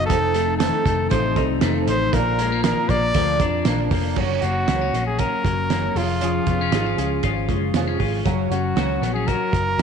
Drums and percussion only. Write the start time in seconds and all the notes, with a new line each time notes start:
0.10 kick, closed hi-hat
0.34 closed hi-hat
0.60 snare, closed hi-hat
0.86 kick, closed hi-hat
1.11 kick, closed hi-hat
1.36 kick, closed hi-hat
1.61 snare, closed hi-hat
1.88 closed hi-hat
2.13 kick, closed hi-hat
2.39 closed hi-hat
2.64 snare, closed hi-hat
2.89 kick, closed hi-hat
3.14 kick, closed hi-hat
3.40 kick, closed hi-hat
3.65 snare, closed hi-hat
3.91 kick, open hi-hat
4.16 kick, crash
4.42 closed hi-hat
4.68 snare, closed hi-hat
4.94 snare, closed hi-hat
5.19 kick, closed hi-hat
5.45 kick, closed hi-hat
5.70 snare, closed hi-hat
5.96 open hi-hat
6.21 closed hi-hat
6.47 kick, closed hi-hat
6.72 snare, closed hi-hat
6.98 closed hi-hat
7.23 kick, closed hi-hat
7.49 kick, closed hi-hat
7.74 snare, closed hi-hat
8.00 kick, open hi-hat
8.26 kick, closed hi-hat
8.52 closed hi-hat
8.77 snare, closed hi-hat
9.02 snare, closed hi-hat
9.28 kick, closed hi-hat
9.53 kick, closed hi-hat